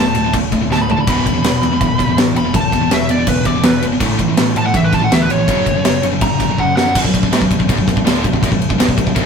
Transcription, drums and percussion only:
0.15 crash
0.33 kick, crash
0.52 kick, crash
0.71 snare
0.90 floor tom
1.07 kick, crash
1.26 kick, crash
1.44 snare, crash
1.63 crash
1.81 kick, crash
1.99 kick, snare, crash
2.18 snare, crash
2.36 crash
2.54 kick, crash
2.72 kick, crash
2.91 snare, crash
3.09 crash
3.27 kick, crash
3.45 kick, crash
3.63 snare, crash
3.82 crash
4.00 kick, crash
4.19 kick, crash
4.37 snare, crash
4.56 crash
4.74 kick, crash
4.93 kick, snare, crash
5.12 snare, crash
5.30 crash
5.48 kick, crash
5.66 kick, crash
5.85 snare, crash
6.03 crash
6.21 kick, crash
6.40 kick, snare, crash
6.58 kick
6.77 snare
6.95 kick, crash
7.04 kick
7.14 kick, crash
7.23 kick
7.33 snare, crash
7.42 kick
7.51 kick, crash
7.60 kick
7.69 kick, crash
7.78 kick
7.88 kick, snare, crash
7.97 kick
8.07 snare, crash
8.24 kick, crash
8.33 kick
8.43 kick, crash
8.52 kick
8.62 crash
8.70 kick
8.80 snare, crash
8.89 kick
8.98 kick, crash
9.07 kick
9.16 kick, crash

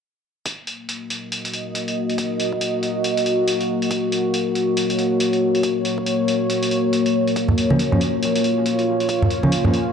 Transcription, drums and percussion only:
0.46 kick, closed hi-hat
0.67 closed hi-hat
0.89 closed hi-hat
1.10 closed hi-hat
1.32 closed hi-hat
1.45 closed hi-hat
1.53 closed hi-hat
1.75 closed hi-hat
1.88 closed hi-hat
2.10 closed hi-hat
2.18 kick, closed hi-hat
2.40 closed hi-hat
2.53 kick
2.61 closed hi-hat
2.83 closed hi-hat
3.04 closed hi-hat
3.17 closed hi-hat
3.26 closed hi-hat
3.48 closed hi-hat
3.61 closed hi-hat
3.82 closed hi-hat
3.91 kick, closed hi-hat
4.12 closed hi-hat
4.34 closed hi-hat
4.55 closed hi-hat
4.77 closed hi-hat
4.90 closed hi-hat
4.99 closed hi-hat
5.20 closed hi-hat
5.33 closed hi-hat
5.55 closed hi-hat
5.63 kick, closed hi-hat
5.85 closed hi-hat
5.98 kick
6.06 closed hi-hat
6.28 closed hi-hat
6.50 closed hi-hat
6.63 closed hi-hat
6.71 closed hi-hat
6.93 closed hi-hat
7.06 closed hi-hat
7.28 closed hi-hat
7.36 kick, closed hi-hat
7.48 low conga
7.58 closed hi-hat
7.70 high conga
7.79 closed hi-hat
7.92 low conga
8.01 closed hi-hat
8.23 closed hi-hat
8.36 closed hi-hat
8.44 closed hi-hat
8.66 closed hi-hat
8.79 closed hi-hat
9.00 closed hi-hat
9.09 kick, closed hi-hat
9.22 low conga
9.30 closed hi-hat
9.43 kick, high conga
9.52 closed hi-hat
9.65 low conga
9.74 closed hi-hat

